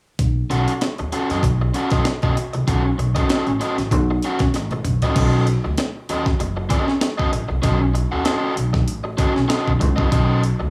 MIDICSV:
0, 0, Header, 1, 5, 480
1, 0, Start_track
1, 0, Tempo, 620476
1, 147, Time_signature, 4, 2, 24, 8
1, 8278, End_track
2, 0, Start_track
2, 0, Title_t, "Overdriven electric guitar"
2, 0, Program_c, 0, 29
2, 386, Note_on_c, 0, 61, 71
2, 390, Note_on_c, 0, 66, 73
2, 392, Note_on_c, 0, 69, 77
2, 401, Note_on_c, 0, 78, 88
2, 546, Note_off_c, 0, 61, 0
2, 548, Note_off_c, 0, 66, 0
2, 549, Note_off_c, 0, 69, 0
2, 553, Note_off_c, 0, 78, 0
2, 870, Note_on_c, 0, 61, 58
2, 872, Note_on_c, 0, 66, 56
2, 877, Note_on_c, 0, 69, 61
2, 878, Note_on_c, 0, 78, 52
2, 999, Note_off_c, 0, 61, 0
2, 1000, Note_off_c, 0, 66, 0
2, 1002, Note_off_c, 0, 69, 0
2, 1003, Note_off_c, 0, 78, 0
2, 1011, Note_on_c, 0, 69, 47
2, 1011, Note_on_c, 0, 75, 49
2, 1015, Note_on_c, 0, 66, 46
2, 1021, Note_on_c, 0, 61, 36
2, 1104, Note_off_c, 0, 61, 0
2, 1106, Note_off_c, 0, 66, 0
2, 1109, Note_off_c, 0, 69, 0
2, 1109, Note_off_c, 0, 75, 0
2, 1346, Note_on_c, 0, 61, 70
2, 1354, Note_on_c, 0, 66, 70
2, 1358, Note_on_c, 0, 69, 63
2, 1358, Note_on_c, 0, 78, 73
2, 1477, Note_off_c, 0, 61, 0
2, 1478, Note_off_c, 0, 69, 0
2, 1480, Note_off_c, 0, 78, 0
2, 1481, Note_off_c, 0, 66, 0
2, 1483, Note_on_c, 0, 75, 57
2, 1487, Note_on_c, 0, 69, 57
2, 1495, Note_on_c, 0, 66, 50
2, 1496, Note_on_c, 0, 61, 47
2, 1583, Note_off_c, 0, 61, 0
2, 1583, Note_off_c, 0, 66, 0
2, 1585, Note_off_c, 0, 75, 0
2, 1587, Note_off_c, 0, 69, 0
2, 1724, Note_on_c, 0, 75, 60
2, 1728, Note_on_c, 0, 69, 60
2, 1732, Note_on_c, 0, 66, 71
2, 1736, Note_on_c, 0, 61, 60
2, 1821, Note_off_c, 0, 61, 0
2, 1823, Note_off_c, 0, 66, 0
2, 1824, Note_off_c, 0, 69, 0
2, 1827, Note_off_c, 0, 75, 0
2, 2069, Note_on_c, 0, 61, 70
2, 2070, Note_on_c, 0, 66, 69
2, 2076, Note_on_c, 0, 69, 79
2, 2077, Note_on_c, 0, 78, 73
2, 2193, Note_off_c, 0, 69, 0
2, 2199, Note_off_c, 0, 66, 0
2, 2199, Note_off_c, 0, 78, 0
2, 2228, Note_off_c, 0, 61, 0
2, 2435, Note_on_c, 0, 75, 54
2, 2443, Note_on_c, 0, 69, 58
2, 2445, Note_on_c, 0, 66, 53
2, 2450, Note_on_c, 0, 61, 52
2, 2536, Note_off_c, 0, 61, 0
2, 2542, Note_off_c, 0, 75, 0
2, 2543, Note_off_c, 0, 66, 0
2, 2546, Note_off_c, 0, 69, 0
2, 2546, Note_on_c, 0, 61, 82
2, 2552, Note_on_c, 0, 66, 76
2, 2555, Note_on_c, 0, 69, 81
2, 2557, Note_on_c, 0, 75, 85
2, 2676, Note_off_c, 0, 75, 0
2, 2682, Note_off_c, 0, 69, 0
2, 2684, Note_off_c, 0, 66, 0
2, 2707, Note_off_c, 0, 61, 0
2, 2785, Note_on_c, 0, 61, 56
2, 2790, Note_on_c, 0, 66, 59
2, 2792, Note_on_c, 0, 69, 64
2, 2795, Note_on_c, 0, 75, 69
2, 2916, Note_off_c, 0, 75, 0
2, 2917, Note_off_c, 0, 61, 0
2, 2919, Note_off_c, 0, 66, 0
2, 2920, Note_off_c, 0, 69, 0
2, 3283, Note_on_c, 0, 61, 70
2, 3287, Note_on_c, 0, 66, 84
2, 3290, Note_on_c, 0, 69, 72
2, 3295, Note_on_c, 0, 78, 78
2, 3411, Note_off_c, 0, 69, 0
2, 3414, Note_off_c, 0, 66, 0
2, 3415, Note_off_c, 0, 78, 0
2, 3435, Note_off_c, 0, 61, 0
2, 3891, Note_on_c, 0, 75, 69
2, 3898, Note_on_c, 0, 69, 65
2, 3900, Note_on_c, 0, 66, 64
2, 3904, Note_on_c, 0, 61, 62
2, 3984, Note_off_c, 0, 61, 0
2, 3990, Note_off_c, 0, 66, 0
2, 3990, Note_off_c, 0, 69, 0
2, 3993, Note_on_c, 0, 61, 75
2, 3995, Note_off_c, 0, 75, 0
2, 3999, Note_on_c, 0, 66, 76
2, 4000, Note_on_c, 0, 69, 88
2, 4004, Note_on_c, 0, 75, 77
2, 4214, Note_off_c, 0, 61, 0
2, 4218, Note_off_c, 0, 66, 0
2, 4218, Note_off_c, 0, 69, 0
2, 4220, Note_off_c, 0, 75, 0
2, 4715, Note_on_c, 0, 61, 62
2, 4717, Note_on_c, 0, 66, 69
2, 4722, Note_on_c, 0, 69, 66
2, 4723, Note_on_c, 0, 75, 73
2, 4837, Note_off_c, 0, 75, 0
2, 4841, Note_off_c, 0, 61, 0
2, 4841, Note_off_c, 0, 69, 0
2, 4843, Note_off_c, 0, 66, 0
2, 5178, Note_on_c, 0, 61, 95
2, 5181, Note_on_c, 0, 66, 92
2, 5183, Note_on_c, 0, 69, 96
2, 5189, Note_on_c, 0, 75, 100
2, 5308, Note_off_c, 0, 75, 0
2, 5312, Note_off_c, 0, 69, 0
2, 5313, Note_off_c, 0, 66, 0
2, 5348, Note_off_c, 0, 61, 0
2, 5552, Note_on_c, 0, 75, 85
2, 5554, Note_on_c, 0, 69, 69
2, 5558, Note_on_c, 0, 66, 70
2, 5562, Note_on_c, 0, 61, 69
2, 5653, Note_off_c, 0, 61, 0
2, 5654, Note_off_c, 0, 66, 0
2, 5657, Note_off_c, 0, 69, 0
2, 5661, Note_off_c, 0, 75, 0
2, 5895, Note_on_c, 0, 61, 62
2, 5900, Note_on_c, 0, 69, 82
2, 5901, Note_on_c, 0, 66, 78
2, 5904, Note_on_c, 0, 75, 87
2, 6025, Note_off_c, 0, 75, 0
2, 6029, Note_off_c, 0, 69, 0
2, 6036, Note_off_c, 0, 66, 0
2, 6060, Note_off_c, 0, 61, 0
2, 6279, Note_on_c, 0, 78, 56
2, 6282, Note_on_c, 0, 69, 56
2, 6285, Note_on_c, 0, 66, 53
2, 6290, Note_on_c, 0, 61, 46
2, 6369, Note_off_c, 0, 61, 0
2, 6372, Note_off_c, 0, 66, 0
2, 6373, Note_off_c, 0, 69, 0
2, 6378, Note_on_c, 0, 61, 81
2, 6381, Note_on_c, 0, 66, 93
2, 6382, Note_off_c, 0, 78, 0
2, 6383, Note_on_c, 0, 69, 98
2, 6388, Note_on_c, 0, 75, 91
2, 6606, Note_off_c, 0, 61, 0
2, 6607, Note_off_c, 0, 66, 0
2, 6608, Note_off_c, 0, 69, 0
2, 6611, Note_off_c, 0, 75, 0
2, 7097, Note_on_c, 0, 61, 78
2, 7100, Note_on_c, 0, 66, 93
2, 7105, Note_on_c, 0, 69, 85
2, 7106, Note_on_c, 0, 75, 80
2, 7218, Note_off_c, 0, 75, 0
2, 7224, Note_off_c, 0, 69, 0
2, 7229, Note_off_c, 0, 66, 0
2, 7261, Note_off_c, 0, 61, 0
2, 7334, Note_on_c, 0, 61, 90
2, 7335, Note_on_c, 0, 66, 97
2, 7339, Note_on_c, 0, 69, 92
2, 7345, Note_on_c, 0, 75, 102
2, 7499, Note_off_c, 0, 61, 0
2, 7500, Note_off_c, 0, 66, 0
2, 7502, Note_off_c, 0, 69, 0
2, 7505, Note_off_c, 0, 75, 0
2, 7705, Note_on_c, 0, 75, 55
2, 7714, Note_on_c, 0, 66, 59
2, 7714, Note_on_c, 0, 69, 54
2, 7718, Note_on_c, 0, 61, 52
2, 7810, Note_off_c, 0, 61, 0
2, 7815, Note_off_c, 0, 75, 0
2, 7817, Note_off_c, 0, 66, 0
2, 7819, Note_off_c, 0, 69, 0
2, 7819, Note_on_c, 0, 61, 76
2, 7826, Note_on_c, 0, 66, 76
2, 7828, Note_on_c, 0, 69, 80
2, 7834, Note_on_c, 0, 75, 96
2, 8047, Note_off_c, 0, 61, 0
2, 8050, Note_off_c, 0, 66, 0
2, 8051, Note_off_c, 0, 69, 0
2, 8054, Note_off_c, 0, 75, 0
2, 8278, End_track
3, 0, Start_track
3, 0, Title_t, "Upright bass"
3, 0, Program_c, 1, 32
3, 150, Note_on_c, 1, 35, 80
3, 341, Note_off_c, 1, 35, 0
3, 387, Note_on_c, 1, 35, 87
3, 495, Note_off_c, 1, 35, 0
3, 770, Note_on_c, 1, 39, 73
3, 852, Note_off_c, 1, 39, 0
3, 1006, Note_on_c, 1, 42, 68
3, 1089, Note_off_c, 1, 42, 0
3, 1108, Note_on_c, 1, 35, 92
3, 1300, Note_off_c, 1, 35, 0
3, 1483, Note_on_c, 1, 35, 84
3, 1568, Note_off_c, 1, 35, 0
3, 1727, Note_on_c, 1, 47, 82
3, 1810, Note_off_c, 1, 47, 0
3, 1970, Note_on_c, 1, 36, 84
3, 2052, Note_off_c, 1, 36, 0
3, 2072, Note_on_c, 1, 35, 89
3, 2263, Note_off_c, 1, 35, 0
3, 2310, Note_on_c, 1, 35, 95
3, 2418, Note_off_c, 1, 35, 0
3, 2683, Note_on_c, 1, 33, 91
3, 2768, Note_off_c, 1, 33, 0
3, 2923, Note_on_c, 1, 33, 78
3, 3030, Note_off_c, 1, 33, 0
3, 3030, Note_on_c, 1, 35, 84
3, 3222, Note_off_c, 1, 35, 0
3, 3408, Note_on_c, 1, 35, 76
3, 3510, Note_off_c, 1, 35, 0
3, 3510, Note_on_c, 1, 33, 79
3, 3702, Note_off_c, 1, 33, 0
3, 3756, Note_on_c, 1, 35, 81
3, 3861, Note_off_c, 1, 35, 0
3, 3989, Note_on_c, 1, 35, 100
3, 4289, Note_off_c, 1, 35, 0
3, 4374, Note_on_c, 1, 38, 91
3, 4454, Note_off_c, 1, 38, 0
3, 4718, Note_on_c, 1, 39, 86
3, 4906, Note_off_c, 1, 39, 0
3, 4959, Note_on_c, 1, 30, 93
3, 5147, Note_off_c, 1, 30, 0
3, 5676, Note_on_c, 1, 33, 82
3, 5780, Note_off_c, 1, 33, 0
3, 5806, Note_on_c, 1, 36, 82
3, 5889, Note_off_c, 1, 36, 0
3, 5909, Note_on_c, 1, 35, 96
3, 6208, Note_off_c, 1, 35, 0
3, 6287, Note_on_c, 1, 39, 86
3, 6369, Note_off_c, 1, 39, 0
3, 6631, Note_on_c, 1, 35, 86
3, 6870, Note_off_c, 1, 35, 0
3, 6870, Note_on_c, 1, 33, 88
3, 7061, Note_off_c, 1, 33, 0
3, 7245, Note_on_c, 1, 35, 82
3, 7328, Note_off_c, 1, 35, 0
3, 7486, Note_on_c, 1, 35, 93
3, 7594, Note_off_c, 1, 35, 0
3, 7594, Note_on_c, 1, 37, 88
3, 7723, Note_off_c, 1, 37, 0
3, 7723, Note_on_c, 1, 36, 88
3, 7807, Note_off_c, 1, 36, 0
3, 7830, Note_on_c, 1, 35, 96
3, 8129, Note_off_c, 1, 35, 0
3, 8203, Note_on_c, 1, 38, 82
3, 8278, Note_off_c, 1, 38, 0
3, 8278, End_track
4, 0, Start_track
4, 0, Title_t, "Muted overdriven electric guitar strokes"
4, 630, Note_on_c, 9, 29, 36
4, 707, Note_off_c, 9, 29, 0
4, 767, Note_on_c, 9, 29, 45
4, 844, Note_off_c, 9, 29, 0
4, 1113, Note_on_c, 9, 29, 29
4, 1191, Note_off_c, 9, 29, 0
4, 1248, Note_on_c, 9, 29, 45
4, 1326, Note_off_c, 9, 29, 0
4, 1592, Note_on_c, 9, 29, 38
4, 1669, Note_off_c, 9, 29, 0
4, 1830, Note_on_c, 9, 29, 34
4, 1908, Note_off_c, 9, 29, 0
4, 1960, Note_on_c, 9, 29, 34
4, 2037, Note_off_c, 9, 29, 0
4, 2202, Note_on_c, 9, 29, 42
4, 2280, Note_off_c, 9, 29, 0
4, 2309, Note_on_c, 9, 29, 35
4, 2386, Note_off_c, 9, 29, 0
4, 2685, Note_on_c, 9, 29, 42
4, 2763, Note_off_c, 9, 29, 0
4, 2925, Note_on_c, 9, 29, 34
4, 3002, Note_off_c, 9, 29, 0
4, 3028, Note_on_c, 9, 29, 40
4, 3106, Note_off_c, 9, 29, 0
4, 3176, Note_on_c, 9, 29, 46
4, 3253, Note_off_c, 9, 29, 0
4, 3418, Note_on_c, 9, 29, 37
4, 3495, Note_off_c, 9, 29, 0
4, 3521, Note_on_c, 9, 29, 40
4, 3599, Note_off_c, 9, 29, 0
4, 3653, Note_on_c, 9, 29, 42
4, 3730, Note_off_c, 9, 29, 0
4, 4366, Note_on_c, 9, 29, 45
4, 4443, Note_off_c, 9, 29, 0
4, 4476, Note_on_c, 9, 29, 39
4, 4554, Note_off_c, 9, 29, 0
4, 4847, Note_on_c, 9, 29, 39
4, 4924, Note_off_c, 9, 29, 0
4, 4949, Note_on_c, 9, 29, 39
4, 5026, Note_off_c, 9, 29, 0
4, 5080, Note_on_c, 9, 29, 43
4, 5157, Note_off_c, 9, 29, 0
4, 5317, Note_on_c, 9, 29, 40
4, 5394, Note_off_c, 9, 29, 0
4, 5423, Note_on_c, 9, 29, 39
4, 5501, Note_off_c, 9, 29, 0
4, 5662, Note_on_c, 9, 29, 39
4, 5740, Note_off_c, 9, 29, 0
4, 5790, Note_on_c, 9, 29, 43
4, 5868, Note_off_c, 9, 29, 0
4, 6035, Note_on_c, 9, 29, 47
4, 6112, Note_off_c, 9, 29, 0
4, 6140, Note_on_c, 9, 29, 41
4, 6218, Note_off_c, 9, 29, 0
4, 6614, Note_on_c, 9, 29, 41
4, 6691, Note_off_c, 9, 29, 0
4, 6754, Note_on_c, 9, 29, 33
4, 6831, Note_off_c, 9, 29, 0
4, 6992, Note_on_c, 9, 29, 53
4, 7069, Note_off_c, 9, 29, 0
4, 7227, Note_on_c, 9, 29, 39
4, 7305, Note_off_c, 9, 29, 0
4, 7577, Note_on_c, 9, 29, 41
4, 7654, Note_off_c, 9, 29, 0
4, 8197, Note_on_c, 9, 29, 46
4, 8274, Note_off_c, 9, 29, 0
4, 8278, End_track
5, 0, Start_track
5, 0, Title_t, "Drums"
5, 147, Note_on_c, 9, 42, 75
5, 148, Note_on_c, 9, 36, 94
5, 224, Note_off_c, 9, 42, 0
5, 225, Note_off_c, 9, 36, 0
5, 393, Note_on_c, 9, 42, 58
5, 470, Note_off_c, 9, 42, 0
5, 524, Note_on_c, 9, 42, 54
5, 601, Note_off_c, 9, 42, 0
5, 629, Note_on_c, 9, 42, 91
5, 633, Note_on_c, 9, 38, 90
5, 706, Note_off_c, 9, 42, 0
5, 711, Note_off_c, 9, 38, 0
5, 761, Note_on_c, 9, 42, 33
5, 838, Note_off_c, 9, 42, 0
5, 870, Note_on_c, 9, 42, 71
5, 947, Note_off_c, 9, 42, 0
5, 1003, Note_on_c, 9, 38, 34
5, 1006, Note_on_c, 9, 42, 53
5, 1080, Note_off_c, 9, 38, 0
5, 1083, Note_off_c, 9, 42, 0
5, 1106, Note_on_c, 9, 36, 83
5, 1113, Note_on_c, 9, 42, 87
5, 1183, Note_off_c, 9, 36, 0
5, 1191, Note_off_c, 9, 42, 0
5, 1348, Note_on_c, 9, 42, 67
5, 1426, Note_off_c, 9, 42, 0
5, 1473, Note_on_c, 9, 42, 52
5, 1480, Note_on_c, 9, 38, 40
5, 1482, Note_on_c, 9, 36, 92
5, 1550, Note_off_c, 9, 42, 0
5, 1557, Note_off_c, 9, 38, 0
5, 1560, Note_off_c, 9, 36, 0
5, 1587, Note_on_c, 9, 38, 95
5, 1587, Note_on_c, 9, 42, 76
5, 1664, Note_off_c, 9, 38, 0
5, 1664, Note_off_c, 9, 42, 0
5, 1718, Note_on_c, 9, 42, 31
5, 1726, Note_on_c, 9, 36, 79
5, 1795, Note_off_c, 9, 42, 0
5, 1803, Note_off_c, 9, 36, 0
5, 1834, Note_on_c, 9, 42, 79
5, 1911, Note_off_c, 9, 42, 0
5, 1960, Note_on_c, 9, 42, 43
5, 2038, Note_off_c, 9, 42, 0
5, 2071, Note_on_c, 9, 36, 96
5, 2073, Note_on_c, 9, 42, 83
5, 2148, Note_off_c, 9, 36, 0
5, 2151, Note_off_c, 9, 42, 0
5, 2315, Note_on_c, 9, 42, 60
5, 2392, Note_off_c, 9, 42, 0
5, 2442, Note_on_c, 9, 42, 54
5, 2445, Note_on_c, 9, 36, 93
5, 2520, Note_off_c, 9, 42, 0
5, 2523, Note_off_c, 9, 36, 0
5, 2549, Note_on_c, 9, 42, 86
5, 2553, Note_on_c, 9, 38, 102
5, 2626, Note_off_c, 9, 42, 0
5, 2631, Note_off_c, 9, 38, 0
5, 2681, Note_on_c, 9, 42, 35
5, 2759, Note_off_c, 9, 42, 0
5, 2791, Note_on_c, 9, 42, 66
5, 2869, Note_off_c, 9, 42, 0
5, 2925, Note_on_c, 9, 38, 33
5, 2927, Note_on_c, 9, 42, 52
5, 3002, Note_off_c, 9, 38, 0
5, 3005, Note_off_c, 9, 42, 0
5, 3027, Note_on_c, 9, 36, 79
5, 3031, Note_on_c, 9, 42, 90
5, 3104, Note_off_c, 9, 36, 0
5, 3109, Note_off_c, 9, 42, 0
5, 3268, Note_on_c, 9, 42, 67
5, 3346, Note_off_c, 9, 42, 0
5, 3397, Note_on_c, 9, 42, 50
5, 3404, Note_on_c, 9, 38, 35
5, 3405, Note_on_c, 9, 36, 84
5, 3474, Note_off_c, 9, 42, 0
5, 3482, Note_off_c, 9, 36, 0
5, 3482, Note_off_c, 9, 38, 0
5, 3512, Note_on_c, 9, 38, 51
5, 3512, Note_on_c, 9, 42, 80
5, 3589, Note_off_c, 9, 38, 0
5, 3589, Note_off_c, 9, 42, 0
5, 3641, Note_on_c, 9, 42, 30
5, 3645, Note_on_c, 9, 48, 51
5, 3718, Note_off_c, 9, 42, 0
5, 3722, Note_off_c, 9, 48, 0
5, 3748, Note_on_c, 9, 45, 84
5, 3750, Note_on_c, 9, 42, 82
5, 3825, Note_off_c, 9, 45, 0
5, 3828, Note_off_c, 9, 42, 0
5, 3883, Note_on_c, 9, 42, 51
5, 3887, Note_on_c, 9, 43, 80
5, 3960, Note_off_c, 9, 42, 0
5, 3964, Note_off_c, 9, 43, 0
5, 3989, Note_on_c, 9, 49, 76
5, 3990, Note_on_c, 9, 42, 80
5, 3991, Note_on_c, 9, 36, 104
5, 4067, Note_off_c, 9, 42, 0
5, 4067, Note_off_c, 9, 49, 0
5, 4068, Note_off_c, 9, 36, 0
5, 4230, Note_on_c, 9, 42, 64
5, 4307, Note_off_c, 9, 42, 0
5, 4468, Note_on_c, 9, 42, 94
5, 4472, Note_on_c, 9, 38, 97
5, 4545, Note_off_c, 9, 42, 0
5, 4549, Note_off_c, 9, 38, 0
5, 4712, Note_on_c, 9, 42, 72
5, 4790, Note_off_c, 9, 42, 0
5, 4843, Note_on_c, 9, 36, 92
5, 4843, Note_on_c, 9, 38, 36
5, 4920, Note_off_c, 9, 38, 0
5, 4921, Note_off_c, 9, 36, 0
5, 4952, Note_on_c, 9, 42, 86
5, 5029, Note_off_c, 9, 42, 0
5, 5185, Note_on_c, 9, 42, 79
5, 5188, Note_on_c, 9, 36, 83
5, 5262, Note_off_c, 9, 42, 0
5, 5266, Note_off_c, 9, 36, 0
5, 5323, Note_on_c, 9, 38, 39
5, 5401, Note_off_c, 9, 38, 0
5, 5426, Note_on_c, 9, 38, 122
5, 5426, Note_on_c, 9, 42, 92
5, 5503, Note_off_c, 9, 38, 0
5, 5503, Note_off_c, 9, 42, 0
5, 5566, Note_on_c, 9, 36, 91
5, 5643, Note_off_c, 9, 36, 0
5, 5669, Note_on_c, 9, 42, 81
5, 5747, Note_off_c, 9, 42, 0
5, 5904, Note_on_c, 9, 42, 78
5, 5908, Note_on_c, 9, 36, 107
5, 5982, Note_off_c, 9, 42, 0
5, 5985, Note_off_c, 9, 36, 0
5, 6151, Note_on_c, 9, 42, 72
5, 6229, Note_off_c, 9, 42, 0
5, 6383, Note_on_c, 9, 42, 101
5, 6387, Note_on_c, 9, 38, 102
5, 6460, Note_off_c, 9, 42, 0
5, 6464, Note_off_c, 9, 38, 0
5, 6630, Note_on_c, 9, 42, 76
5, 6707, Note_off_c, 9, 42, 0
5, 6761, Note_on_c, 9, 36, 94
5, 6761, Note_on_c, 9, 38, 36
5, 6838, Note_off_c, 9, 36, 0
5, 6839, Note_off_c, 9, 38, 0
5, 6867, Note_on_c, 9, 42, 93
5, 6944, Note_off_c, 9, 42, 0
5, 7104, Note_on_c, 9, 42, 69
5, 7106, Note_on_c, 9, 36, 83
5, 7181, Note_off_c, 9, 42, 0
5, 7184, Note_off_c, 9, 36, 0
5, 7244, Note_on_c, 9, 38, 43
5, 7321, Note_off_c, 9, 38, 0
5, 7348, Note_on_c, 9, 38, 115
5, 7349, Note_on_c, 9, 42, 84
5, 7426, Note_off_c, 9, 38, 0
5, 7426, Note_off_c, 9, 42, 0
5, 7485, Note_on_c, 9, 36, 78
5, 7562, Note_off_c, 9, 36, 0
5, 7590, Note_on_c, 9, 36, 86
5, 7590, Note_on_c, 9, 42, 84
5, 7667, Note_off_c, 9, 36, 0
5, 7667, Note_off_c, 9, 42, 0
5, 7721, Note_on_c, 9, 36, 94
5, 7798, Note_off_c, 9, 36, 0
5, 7829, Note_on_c, 9, 36, 113
5, 7831, Note_on_c, 9, 42, 77
5, 7906, Note_off_c, 9, 36, 0
5, 7908, Note_off_c, 9, 42, 0
5, 8073, Note_on_c, 9, 42, 68
5, 8150, Note_off_c, 9, 42, 0
5, 8278, End_track
0, 0, End_of_file